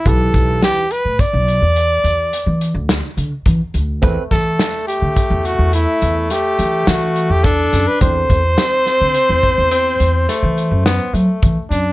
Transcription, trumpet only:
\new Staff \with { instrumentName = "Trumpet" } { \time 7/4 \key a \dorian \tempo 4 = 106 a'4 g'8 b'8 d''2. r2 | r8 a'4 g'4 fis'8 e'4 g'4 fis'8. g'16 a'8. b'16 | c''1. r8 d'8 | }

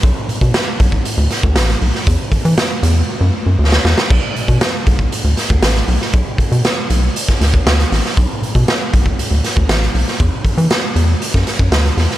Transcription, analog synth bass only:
\new Staff \with { instrumentName = "Analog synth bass" } { \clef bass \time 4/4 \key b \minor \tempo 4 = 118 b,,16 r16 b,16 b,16 r8 b,,8 r16 d,16 r16 d,16 a,,8 b,,16 r16 | e,16 r16 e16 e16 r8 e,8 r16 fis,16 r16 fis,16 d,8 e,16 r16 | b,,16 r16 b,16 b,16 r8 b,,8 r16 d,16 r16 d,16 a,,8 b,,16 r16 | b,,16 r16 b,16 b,16 r8 b,,8 r8 d,8 d,8 a,,16 r16 |
b,,16 r16 b,16 b,16 r8 b,,8 d,16 d,16 r16 d,16 a,,8 b,,16 r16 | e,16 r16 e16 e16 r8 e,8 r16 fis,16 r16 fis,16 d,8 e,16 r16 | }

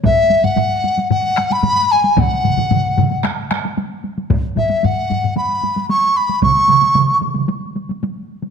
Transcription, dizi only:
\new Staff \with { instrumentName = "Dizi" } { \time 4/4 \tempo 4 = 113 e''8. fis''4~ fis''16 fis''8. b''8. gis''8 | fis''2 r2 | r8 e''8 fis''4 b''4 cis'''8 b''8 | cis'''4. r2 r8 | }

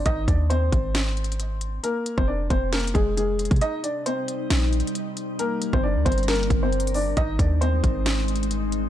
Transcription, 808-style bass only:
\new Staff \with { instrumentName = "808-style bass" } { \clef bass \time 4/4 \key aes \lydian \tempo 4 = 135 aes,,8 ees,4 aes,,2~ aes,,8 | r8. f,,8. f,,4 f,,4~ f,,16 c16 | r2 bes,,8. r4 r16 | r8. g,,8 d,16 g,,4 g,,4. |
aes,,8 ees,4 aes,,2~ aes,,8 | }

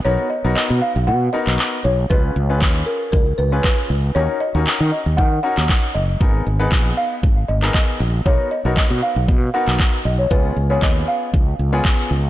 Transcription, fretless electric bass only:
\new Staff \with { instrumentName = "Fretless electric bass" } { \clef bass \time 4/4 \key ces \lydian \tempo 4 = 117 b,,16 r8 b,,16 r16 b,16 r16 b,,16 b,8 r16 b,,16 r8 b,,8 | des,8 des,8 ees,8 r8 des,8 des,8 r8 des,8 | ees,16 r8 ees,16 r16 ees16 r16 ees,16 ees8 r16 ees,16 r8 ges,,8 | aes,,8 aes,,8 bes,,8 r8 aes,,8 aes,,8 r8 bes,,8 |
b,,16 r8 b,,16 r16 b,16 r16 b,,16 b,8 r16 b,,16 r8 b,,8 | des,8 des,8 ees,8 r8 des,8 des,8 r8 des,8 | }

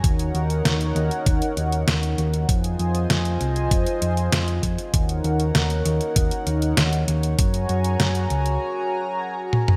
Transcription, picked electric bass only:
\new Staff \with { instrumentName = "Picked electric bass" } { \clef bass \time 4/4 \key ees \dorian \tempo 4 = 98 ees,8 ees,8 ees,8 ees,8 ees,8 ees,8 ees,8 ees,8 | f,8 f,8 f,8 c,8 f,8 f,8 f,8 f,8 | ees,8 ees,8 ees,8 ees,8 ees,8 ees,8 ees,8 ees,8 | ges,8 ges,8 ges,8 des,8 r2 | }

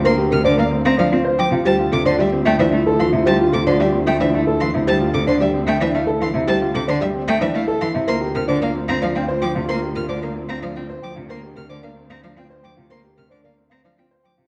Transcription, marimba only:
\new Staff \with { instrumentName = "Marimba" } { \time 3/4 \key g \dorian \tempo 4 = 112 c''16 r16 bes'16 c''16 d''16 r16 f''16 c''16 f''16 r16 g''16 f''16 | c''16 r16 a'16 c''16 d''16 r16 e''16 c''16 e''16 r16 f''16 e''16 | c''16 r16 a'16 c''16 d''16 r16 e''16 c''16 e''16 r16 f''16 e''16 | c''16 r16 a'16 c''16 d''16 r16 e''16 c''16 e''16 r16 f''16 e''16 |
c''16 r16 a'16 c''16 d''16 r16 e''16 c''16 e''16 r16 f''16 e''16 | c''16 r16 bes'16 c''16 d''16 r16 f''16 c''16 f''16 r16 g''16 f''16 | c''16 r16 bes'16 c''16 d''16 r16 f''16 c''16 f''16 r16 g''16 f''16 | c''16 r16 bes'16 c''16 d''16 r16 f''16 c''16 f''16 r16 g''16 f''16 |
c''16 r16 bes'16 c''16 d''16 r16 f''16 c''16 f''16 r16 g''16 f''16 | }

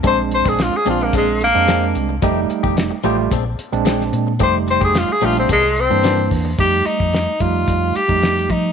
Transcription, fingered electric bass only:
\new Staff \with { instrumentName = "Fingered electric bass" } { \clef bass \time 4/4 \key f \mixolydian \tempo 4 = 110 bes,,8. bes,,8 r16 bes,,8 bes,,8. f,8. c,8 | f,,8 r16 f,,8 r16 a,,8 bes,,8 r16 bes,,8. bes,8 | f,,8. f,,8 r16 bes,,8 c,8. g,8. e,8 | f,8 r16 f,8 r16 f,8 f,8 r16 f,8. f8 | }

